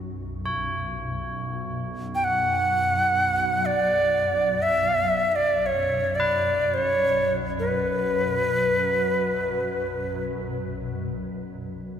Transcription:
Already playing: ambient pad B1 F#2, tubular bells E5
0.46 tubular bells C#5
2.15 native american-style wooden flute G5
2.24 native american-style wooden flute F#5
3.66 native american-style wooden flute D5
4.62 native american-style wooden flute E5
5.32 native american-style wooden flute E5
5.36 native american-style wooden flute D5
5.66 native american-style wooden flute C#5
6.15 native american-style wooden flute D5
6.20 tubular bells B4
6.74 native american-style wooden flute C#5
7.59 native american-style wooden flute B4

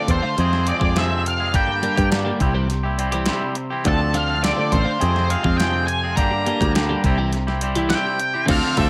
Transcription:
Already playing: clean electric guitar D3 A3 C4 F4, lead electric guitar D5
0.08 picked electric bass E2, clean electric guitar F3 C4 D4 A4, lead electric guitar C5, kick, closed hi-hat
0.23 clean electric guitar D3 A3 C4 F4, muted clean electric guitar stroke
0.37 picked electric bass F2, clean electric guitar F2 C3 F3 G#3 G#4, muted clean electric guitar stroke, closed hi-hat
0.41 clean electric guitar C4
0.53 clean electric guitar F3 G#3 C4 G#4, snare
0.67 clean electric guitar F3 G#3 C4 G#4, lead electric guitar D5, closed hi-hat
0.80 picked electric bass F2, clean electric guitar F3 G#3 C4 F4 G#4, kick
0.84 clean electric guitar F3
0.95 clean electric guitar F2 C3 F3 G#3 C4 G#4, lead electric guitar E5, snare, closed hi-hat
1.10 muted clean electric guitar stroke
1.25 lead electric guitar F5, muted clean electric guitar stroke, closed hi-hat
1.40 clean electric guitar F3 G#3 C4 G#4
1.52 clean electric guitar G2 D3 G3 A#3 D4 G4, picked electric bass G2, lead electric guitar G5, kick, closed hi-hat
1.67 muted clean electric guitar stroke
1.82 clean electric guitar G3 A#3 D4 G4, closed hi-hat
1.96 picked electric bass G2, clean electric guitar G3 A#3 D4 G4, kick, closed hi-hat
2.11 clean electric guitar G2 D3 G3 A#3 D4 G4, muted clean electric guitar stroke, snare, closed hi-hat
2.25 clean electric guitar G3 A#3 D4 G4
2.40 picked electric bass C2, clean electric guitar C3 G3 C4 E4 G4, kick, closed hi-hat
2.54 clean electric guitar E3 G3 C4 G4, muted clean electric guitar stroke
2.68 muted clean electric guitar stroke, closed hi-hat
2.83 clean electric guitar C4 E4 G4
2.98 clean electric guitar G3 C4 E4 G4, closed hi-hat
3.11 clean electric guitar E3 G3 C4 E4 G4, closed hi-hat
3.26 clean electric guitar C3 G3 C4 E4 G4, snare, closed hi-hat
3.41 muted clean electric guitar stroke
3.55 muted clean electric guitar stroke, closed hi-hat
3.70 clean electric guitar C4 E4 G4
3.85 picked electric bass D2, clean electric guitar D3 F3 C4 D4 A4, lead electric guitar A5, kick, closed hi-hat
3.99 muted clean electric guitar stroke
4.14 clean electric guitar D3 A3 C4 F4, lead electric guitar F5, closed hi-hat
4.28 clean electric guitar C4 D4 A4
4.42 clean electric guitar D3 F3 C4 D4 A4, lead electric guitar D5, muted clean electric guitar stroke, snare, closed hi-hat
4.57 clean electric guitar D3 A3 C4 F4
4.71 picked electric bass A1, clean electric guitar F3 C4 D4 A4, lead electric guitar C5, kick, closed hi-hat
4.85 clean electric guitar D3 A3 C4 F4, muted clean electric guitar stroke
4.99 clean electric guitar F2 C3 F3 G#3 C4 G#4, picked electric bass F2, muted clean electric guitar stroke, closed hi-hat
5.13 clean electric guitar F3 G#3 C4 G#4, snare
5.28 clean electric guitar F3 G#3 C4 G#4, lead electric guitar F5, closed hi-hat
5.43 picked electric bass F2, clean electric guitar F3 G#3 C4 F4 G#4, kick
5.58 clean electric guitar F2 C3 F3 G#3 C4, lead electric guitar G5, snare, closed hi-hat
5.62 clean electric guitar G#4
5.73 muted clean electric guitar stroke
5.87 lead electric guitar G#5, muted clean electric guitar stroke, closed hi-hat
6.04 clean electric guitar F3 G#3 C4 G#4
6.16 clean electric guitar G2 D3 G3 A#3 D4 G4, picked electric bass G2, lead electric guitar A#5, kick, closed hi-hat
6.31 muted clean electric guitar stroke
6.46 clean electric guitar G3 A#3 D4 G4, closed hi-hat
6.61 picked electric bass D2, clean electric guitar G3 A#3 D4 G4, kick, closed hi-hat
6.74 clean electric guitar G2 D3 G3 A#3 D4 G4, muted clean electric guitar stroke, snare, closed hi-hat
6.89 clean electric guitar G3 A#3 D4 G4
7.04 picked electric bass C2, clean electric guitar C3 G3 C4 E4 G4, kick, closed hi-hat
7.18 clean electric guitar E3 G3 E4 G4, muted clean electric guitar stroke
7.33 muted clean electric guitar stroke, closed hi-hat
7.47 clean electric guitar C4 E4 G4, snare
7.61 clean electric guitar G3 C4 E4 G4, closed hi-hat
7.75 clean electric guitar E3 G3 C4 E4 G4, closed hi-hat
7.90 clean electric guitar C3 G3 C4, lead electric guitar G5, snare, closed hi-hat
7.94 clean electric guitar E4 G4
8.03 muted clean electric guitar stroke
8.19 muted clean electric guitar stroke, closed hi-hat
8.34 clean electric guitar C4 E4 G4
8.46 picked electric bass D2, clean electric guitar D3 F3 A3 C4 D4 F4, kick, crash, ride
8.50 clean electric guitar A4, lead electric guitar F5
8.75 picked electric bass D2, clean electric guitar D3 F3 A3 C4 D4 F4 A4, lead electric guitar E5, kick, ride

